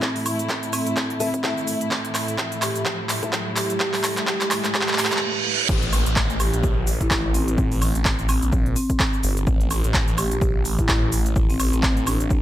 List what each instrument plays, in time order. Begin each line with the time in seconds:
Already playing: string section A2 A3 E4, ambient pad E4 A4 E5 A5, riser
0.02 kick, clap, shaker
0.16 open hi-hat
0.26 open hi-hat, high woodblock, shaker
0.39 closed hi-hat, shaker
0.49 kick, clap, shaker
0.63 closed hi-hat, shaker
0.73 marimba C4, open hi-hat, high woodblock, shaker
0.87 closed hi-hat, shaker
0.97 kick, clap, shaker
1.10 closed hi-hat
1.20 grand piano A3 E4 A4 E5, marimba C4, open hi-hat, shaker
1.34 kick, closed hi-hat, shaker
1.44 grand piano A3 E4 A4 E5, kick, clap, shaker
1.58 shaker
1.68 open hi-hat, shaker
1.81 closed hi-hat, shaker
1.91 kick, clap, shaker
2.05 closed hi-hat
2.15 clap, open hi-hat, high woodblock, shaker
2.28 closed hi-hat, shaker
2.38 kick, clap, shaker
2.52 closed hi-hat, shaker
2.62 marimba G4, clap, open hi-hat, high woodblock, shaker
2.75 marimba G4, closed hi-hat, shaker
2.86 kick, clap, shaker
3.09 clap, open hi-hat, shaker
3.23 grand piano A3 E4 A4 E5, kick, closed hi-hat, shaker
3.33 kick, clap, shaker
3.56 marimba G4, clap, open hi-hat, shaker
3.70 marimba G4, closed hi-hat, shaker
3.80 marimba G4, kick, clap, shaker
3.94 marimba G4, clap, open hi-hat
4.04 clap, open hi-hat, high woodblock, shaker
4.17 clap, closed hi-hat, shaker
4.27 marimba G4, kick, clap, shaker
4.41 marimba G4, clap, closed hi-hat, shaker
4.51 clap, open hi-hat, high woodblock, shaker
4.65 clap, closed hi-hat, shaker
4.75 marimba G4, kick, clap, reverse cymbal, shaker
4.81 clap
4.88 marimba G4, clap, closed hi-hat
4.93 clap
4.98 marimba G4, clap, open hi-hat, shaker
5.05 clap
5.12 marimba G4, kick, clap, closed hi-hat, shaker
5.17 clap
5.69 detuned saw bass A1, kick, crash, downlifter, shaker
5.83 closed hi-hat
5.93 open hi-hat, high woodblock, shaker
6.06 detuned saw bass A1, closed hi-hat, shaker
6.16 kick, clap, shaker
6.30 detuned saw bass A1, closed hi-hat, shaker
6.40 marimba G4, open hi-hat, high woodblock, shaker
6.53 detuned saw bass A#1, marimba G4, closed hi-hat, shaker
6.63 kick, shaker
6.87 detuned saw bass A1, open hi-hat, shaker
7.01 detuned saw bass A1, marimba E4, kick, closed hi-hat, shaker
7.11 marimba E4, kick, clap, shaker
7.34 detuned saw bass A1, marimba C4, open hi-hat, shaker
7.48 marimba C4, closed hi-hat, shaker
7.58 kick, shaker
7.72 detuned saw bass A1, open hi-hat, shaker
7.82 open hi-hat, high woodblock, shaker
7.95 detuned saw bass A1, closed hi-hat, shaker
8.05 kick, clap, shaker
8.19 closed hi-hat, shaker
8.29 marimba C4, open hi-hat, high woodblock, shaker
8.42 detuned saw bass A#1, closed hi-hat, shaker
8.52 kick, shaker
8.66 closed hi-hat
8.76 marimba C4, open hi-hat, shaker
8.90 kick, closed hi-hat, shaker
9.00 kick, clap, shaker
9.13 shaker
9.23 detuned saw bass G1, open hi-hat, shaker
9.37 closed hi-hat, shaker
9.47 detuned saw bass A1, kick, shaker
9.61 closed hi-hat
9.71 open hi-hat, high woodblock, shaker
9.84 detuned saw bass A1, closed hi-hat, shaker
9.94 kick, clap, shaker
10.08 detuned saw bass A1, closed hi-hat, shaker
10.18 marimba G4, open hi-hat, high woodblock, shaker
10.31 detuned saw bass A#1, marimba G4, closed hi-hat, shaker
10.41 kick, shaker
10.65 detuned saw bass A1, open hi-hat, shaker
10.79 detuned saw bass A1, marimba E4, kick, closed hi-hat, shaker
10.89 marimba E4, kick, clap, shaker
11.12 detuned saw bass A1, open hi-hat, shaker
11.26 closed hi-hat, shaker
11.36 kick, shaker
11.49 detuned saw bass A1, marimba C4, open hi-hat, shaker
11.59 marimba C4, open hi-hat, high woodblock, shaker
11.73 detuned saw bass A1, marimba C4, closed hi-hat, shaker
11.83 marimba C4, kick, clap, shaker
11.97 closed hi-hat, shaker
12.07 marimba D4, open hi-hat, high woodblock, shaker
12.20 detuned saw bass A1, closed hi-hat, shaker
12.30 kick, shaker